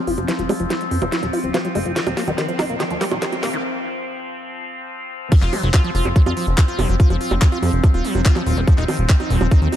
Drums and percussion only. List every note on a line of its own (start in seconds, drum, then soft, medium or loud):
0.07 open hi-hat loud
0.18 closed hi-hat medium
0.18 high bongo soft
0.28 snare medium
0.28 closed hi-hat medium
0.39 closed hi-hat medium
0.49 open hi-hat loud
0.49 high bongo medium
0.60 closed hi-hat medium
0.70 snare medium
0.70 closed hi-hat medium
0.70 high bongo soft
0.81 closed hi-hat medium
0.91 open hi-hat loud
1.02 closed hi-hat medium
1.02 high bongo medium
1.12 snare medium
1.12 closed hi-hat medium
1.23 closed hi-hat medium
1.23 high bongo soft
1.33 open hi-hat loud
1.44 closed hi-hat medium
1.54 snare medium
1.54 closed hi-hat medium
1.54 high bongo medium
1.65 closed hi-hat medium
1.75 open hi-hat loud
1.75 high bongo soft
1.86 closed hi-hat medium
1.96 snare medium
1.96 closed hi-hat medium
2.07 closed hi-hat medium
2.07 high bongo medium
2.17 snare medium
2.17 open hi-hat loud
2.28 closed hi-hat medium
2.28 high bongo soft
2.38 snare medium
2.38 closed hi-hat medium
2.49 closed hi-hat medium
2.59 snare medium
2.59 open hi-hat loud
2.59 high bongo medium
2.70 closed hi-hat medium
2.80 snare medium
2.80 closed hi-hat medium
2.80 high bongo soft
2.91 closed hi-hat medium
3.01 snare medium
3.01 open hi-hat loud
3.11 closed hi-hat medium
3.11 high bongo medium
3.22 snare medium
3.22 closed hi-hat medium
3.32 closed hi-hat medium
3.32 high bongo soft
3.43 snare medium
3.43 open hi-hat loud
3.53 closed hi-hat medium
5.32 kick loud
5.32 closed hi-hat loud
5.32 crash loud
5.42 clap soft
5.42 closed hi-hat soft
5.53 open hi-hat loud
5.53 high bongo soft
5.63 closed hi-hat soft
5.74 kick loud
5.74 clap loud
5.74 closed hi-hat loud
5.74 high bongo medium
5.84 closed hi-hat soft
5.95 open hi-hat loud
6.05 closed hi-hat soft
6.05 high bongo soft
6.16 kick loud
6.16 closed hi-hat loud
6.26 closed hi-hat soft
6.26 high bongo medium
6.37 open hi-hat loud
6.47 closed hi-hat soft
6.58 kick loud
6.58 clap loud
6.58 closed hi-hat loud
6.58 high bongo soft
6.68 closed hi-hat soft
6.79 open hi-hat loud
6.79 high bongo medium
6.89 closed hi-hat soft
7.00 kick loud
7.00 closed hi-hat loud
7.10 closed hi-hat soft
7.10 high bongo soft
7.21 open hi-hat loud
7.31 closed hi-hat soft
7.31 high bongo medium
7.42 kick loud
7.42 clap loud
7.42 closed hi-hat medium
7.52 closed hi-hat soft
7.63 open hi-hat loud
7.63 high bongo soft
7.73 closed hi-hat soft
7.84 kick loud
7.84 closed hi-hat medium
7.84 high bongo medium
7.94 closed hi-hat soft
8.05 open hi-hat loud
8.15 closed hi-hat soft
8.15 high bongo soft
8.26 kick loud
8.26 clap loud
8.26 closed hi-hat medium
8.36 clap soft
8.36 closed hi-hat soft
8.36 high bongo medium
8.46 open hi-hat loud
8.57 closed hi-hat soft
8.67 kick loud
8.67 closed hi-hat medium
8.67 high bongo soft
8.78 clap soft
8.78 closed hi-hat soft
8.88 open hi-hat loud
8.88 high bongo medium
8.99 closed hi-hat soft
9.09 kick loud
9.09 clap loud
9.09 closed hi-hat medium
9.20 closed hi-hat soft
9.20 high bongo soft
9.30 open hi-hat loud
9.41 closed hi-hat soft
9.41 high bongo medium
9.51 kick loud
9.51 closed hi-hat medium
9.62 closed hi-hat soft
9.72 open hi-hat loud
9.72 high bongo soft